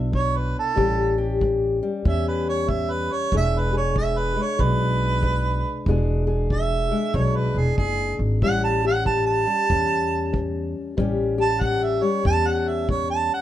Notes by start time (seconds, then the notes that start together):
Already playing: B1 B3 D4 E4
0.12 E2 C#5, kick
0.37 B4
0.59 A4
0.76 A1 A2 G3 C#4 G4, kick
1.18 G4
1.41 A2, kick
1.83 G3
2.05 E2 A2 C#4 E5, kick
2.28 B4
2.49 C#5
2.69 A2 E5, kick
2.92 B4
3.12 C#5
3.32 E1 E2 G#3 D4 G#4, kick
3.37 E5
3.59 B4
3.73 G#4
3.77 C#5
3.95 E2 E5, kick
4.18 B4
4.36 G#3
4.42 C#5
4.59 B1 E2 D4 B4, kick
5.23 E2, kick
5.86 E1 E2 G#3 D4 G#4, kick
6.27 G#4
6.50 E2 E5, kick
6.91 G#3
7.14 B1 E2 D4 C#5, kick
7.36 B4
7.54 E1
7.59 G#4
7.77 F#1 E2 G#4, kick
8.19 G#1
8.42 A1 A2 G3 C#4 G4 F#5, kick
8.64 A5
8.85 G4 F#5
9.05 A2 A5, kick
9.26 A5
9.46 G3
9.70 E2 A2 C#4, kick
10.33 A2, kick
10.97 A1 A2 G3 C#4 G4, kick
11.38 G4 A5
11.60 A2 F#5, kick
11.83 E5
12.02 G3 C#5
12.25 E2 A2 C#4 A5, kick
12.47 F#5
12.68 E5
12.89 A2 C#5, kick
13.10 A5
13.34 F#5